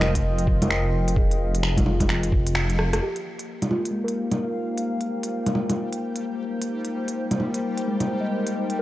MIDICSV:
0, 0, Header, 1, 6, 480
1, 0, Start_track
1, 0, Tempo, 461538
1, 1220, Time_signature, 4, 2, 24, 8
1, 9172, End_track
2, 0, Start_track
2, 0, Title_t, "Ambient pad"
2, 0, Program_c, 0, 92
2, 0, Note_on_c, 0, 53, 93
2, 0, Note_on_c, 0, 65, 82
2, 0, Note_on_c, 0, 75, 94
2, 0, Note_on_c, 0, 79, 68
2, 3135, Note_off_c, 0, 79, 0
2, 3138, Note_on_c, 0, 58, 67
2, 3141, Note_off_c, 0, 53, 0
2, 3433, Note_on_c, 0, 63, 77
2, 3599, Note_on_c, 0, 72, 70
2, 3618, Note_on_c, 0, 77, 77
2, 3687, Note_on_c, 0, 70, 67
2, 3850, Note_off_c, 0, 75, 0
2, 4809, Note_off_c, 0, 65, 0
2, 7331, Note_on_c, 0, 79, 79
2, 7459, Note_off_c, 0, 77, 0
2, 9172, Note_off_c, 0, 58, 0
2, 9172, Note_off_c, 0, 63, 0
2, 9172, Note_off_c, 0, 70, 0
2, 9172, Note_off_c, 0, 72, 0
2, 9172, Note_off_c, 0, 79, 0
2, 9172, End_track
3, 0, Start_track
3, 0, Title_t, "Synth keys"
3, 0, Program_c, 1, 88
3, 0, Control_c, 1, 64, 127
3, 0, Note_on_c, 1, 70, 74
3, 0, Note_on_c, 1, 75, 60
3, 917, Note_off_c, 1, 70, 0
3, 1071, Note_off_c, 1, 75, 0
3, 1221, Note_on_c, 1, 68, 57
3, 1938, Note_on_c, 1, 65, 76
3, 2358, Note_off_c, 1, 68, 0
3, 3076, Note_off_c, 1, 65, 0
3, 3145, Note_on_c, 1, 67, 60
3, 3153, Control_c, 1, 64, 0
3, 3330, Control_c, 1, 64, 127
3, 3856, Note_on_c, 1, 65, 65
3, 4060, Note_on_c, 1, 56, 48
3, 4202, Note_on_c, 1, 70, 49
3, 4280, Note_off_c, 1, 67, 0
3, 4995, Note_off_c, 1, 65, 0
3, 5159, Note_off_c, 1, 56, 0
3, 5289, Note_off_c, 1, 70, 0
3, 8190, Note_on_c, 1, 56, 76
3, 8389, Note_on_c, 1, 72, 50
3, 8535, Note_on_c, 1, 75, 49
3, 9172, Note_off_c, 1, 56, 0
3, 9172, Note_off_c, 1, 72, 0
3, 9172, Note_off_c, 1, 75, 0
3, 9172, End_track
4, 0, Start_track
4, 0, Title_t, "Synth texture"
4, 0, Program_c, 2, 99
4, 3114, Note_on_c, 2, 55, 77
4, 3120, Note_on_c, 2, 79, 78
4, 9172, Note_off_c, 2, 55, 0
4, 9172, Note_off_c, 2, 79, 0
4, 9172, End_track
5, 0, Start_track
5, 0, Title_t, "Detuned saw bass"
5, 0, Program_c, 3, 39
5, 0, Note_on_c, 3, 29, 89
5, 3120, Note_off_c, 3, 29, 0
5, 9172, End_track
6, 0, Start_track
6, 0, Title_t, "Drums"
6, 12, Note_on_c, 9, 26, 60
6, 12, Note_on_c, 9, 61, 58
6, 116, Note_off_c, 9, 26, 0
6, 116, Note_off_c, 9, 61, 0
6, 157, Note_on_c, 9, 36, 61
6, 158, Note_on_c, 9, 42, 53
6, 261, Note_off_c, 9, 36, 0
6, 262, Note_off_c, 9, 42, 0
6, 400, Note_on_c, 9, 42, 45
6, 490, Note_on_c, 9, 36, 101
6, 504, Note_off_c, 9, 42, 0
6, 594, Note_off_c, 9, 36, 0
6, 644, Note_on_c, 9, 42, 54
6, 644, Note_on_c, 9, 61, 66
6, 734, Note_on_c, 9, 26, 101
6, 748, Note_off_c, 9, 42, 0
6, 748, Note_off_c, 9, 61, 0
6, 838, Note_off_c, 9, 26, 0
6, 1122, Note_on_c, 9, 42, 58
6, 1210, Note_on_c, 9, 36, 117
6, 1226, Note_off_c, 9, 42, 0
6, 1314, Note_off_c, 9, 36, 0
6, 1366, Note_on_c, 9, 42, 34
6, 1470, Note_off_c, 9, 42, 0
6, 1608, Note_on_c, 9, 42, 55
6, 1698, Note_on_c, 9, 26, 102
6, 1712, Note_off_c, 9, 42, 0
6, 1802, Note_off_c, 9, 26, 0
6, 1841, Note_on_c, 9, 36, 104
6, 1847, Note_on_c, 9, 42, 45
6, 1847, Note_on_c, 9, 61, 69
6, 1935, Note_off_c, 9, 61, 0
6, 1935, Note_on_c, 9, 61, 56
6, 1945, Note_off_c, 9, 36, 0
6, 1951, Note_off_c, 9, 42, 0
6, 2039, Note_off_c, 9, 61, 0
6, 2081, Note_on_c, 9, 36, 58
6, 2084, Note_on_c, 9, 42, 58
6, 2084, Note_on_c, 9, 61, 63
6, 2174, Note_on_c, 9, 26, 61
6, 2185, Note_off_c, 9, 36, 0
6, 2188, Note_off_c, 9, 42, 0
6, 2188, Note_off_c, 9, 61, 0
6, 2278, Note_off_c, 9, 26, 0
6, 2323, Note_on_c, 9, 42, 46
6, 2415, Note_on_c, 9, 36, 101
6, 2427, Note_off_c, 9, 42, 0
6, 2519, Note_off_c, 9, 36, 0
6, 2565, Note_on_c, 9, 42, 56
6, 2653, Note_on_c, 9, 26, 101
6, 2669, Note_off_c, 9, 42, 0
6, 2757, Note_off_c, 9, 26, 0
6, 2806, Note_on_c, 9, 42, 34
6, 2900, Note_on_c, 9, 37, 63
6, 2910, Note_off_c, 9, 42, 0
6, 3004, Note_off_c, 9, 37, 0
6, 3050, Note_on_c, 9, 37, 76
6, 3050, Note_on_c, 9, 42, 59
6, 3154, Note_off_c, 9, 37, 0
6, 3154, Note_off_c, 9, 42, 0
6, 3286, Note_on_c, 9, 42, 30
6, 3390, Note_off_c, 9, 42, 0
6, 3528, Note_on_c, 9, 42, 49
6, 3632, Note_off_c, 9, 42, 0
6, 3766, Note_on_c, 9, 42, 41
6, 3766, Note_on_c, 9, 61, 57
6, 3856, Note_off_c, 9, 61, 0
6, 3856, Note_on_c, 9, 61, 48
6, 3870, Note_off_c, 9, 42, 0
6, 3960, Note_off_c, 9, 61, 0
6, 4008, Note_on_c, 9, 42, 47
6, 4112, Note_off_c, 9, 42, 0
6, 4246, Note_on_c, 9, 42, 39
6, 4350, Note_off_c, 9, 42, 0
6, 4488, Note_on_c, 9, 42, 49
6, 4488, Note_on_c, 9, 61, 57
6, 4592, Note_off_c, 9, 42, 0
6, 4592, Note_off_c, 9, 61, 0
6, 4967, Note_on_c, 9, 42, 51
6, 5071, Note_off_c, 9, 42, 0
6, 5207, Note_on_c, 9, 42, 30
6, 5311, Note_off_c, 9, 42, 0
6, 5443, Note_on_c, 9, 42, 51
6, 5547, Note_off_c, 9, 42, 0
6, 5683, Note_on_c, 9, 42, 41
6, 5683, Note_on_c, 9, 61, 58
6, 5772, Note_off_c, 9, 61, 0
6, 5772, Note_on_c, 9, 61, 50
6, 5787, Note_off_c, 9, 42, 0
6, 5876, Note_off_c, 9, 61, 0
6, 5923, Note_on_c, 9, 42, 53
6, 5923, Note_on_c, 9, 61, 53
6, 6027, Note_off_c, 9, 42, 0
6, 6027, Note_off_c, 9, 61, 0
6, 6163, Note_on_c, 9, 42, 40
6, 6267, Note_off_c, 9, 42, 0
6, 6403, Note_on_c, 9, 42, 49
6, 6507, Note_off_c, 9, 42, 0
6, 6881, Note_on_c, 9, 42, 51
6, 6985, Note_off_c, 9, 42, 0
6, 7120, Note_on_c, 9, 42, 32
6, 7224, Note_off_c, 9, 42, 0
6, 7364, Note_on_c, 9, 42, 53
6, 7468, Note_off_c, 9, 42, 0
6, 7603, Note_on_c, 9, 42, 41
6, 7603, Note_on_c, 9, 61, 57
6, 7695, Note_off_c, 9, 61, 0
6, 7695, Note_on_c, 9, 61, 44
6, 7707, Note_off_c, 9, 42, 0
6, 7799, Note_off_c, 9, 61, 0
6, 7844, Note_on_c, 9, 42, 49
6, 7948, Note_off_c, 9, 42, 0
6, 8086, Note_on_c, 9, 42, 40
6, 8190, Note_off_c, 9, 42, 0
6, 8324, Note_on_c, 9, 42, 52
6, 8324, Note_on_c, 9, 61, 55
6, 8428, Note_off_c, 9, 42, 0
6, 8428, Note_off_c, 9, 61, 0
6, 8805, Note_on_c, 9, 42, 49
6, 8909, Note_off_c, 9, 42, 0
6, 9046, Note_on_c, 9, 42, 30
6, 9150, Note_off_c, 9, 42, 0
6, 9172, End_track
0, 0, End_of_file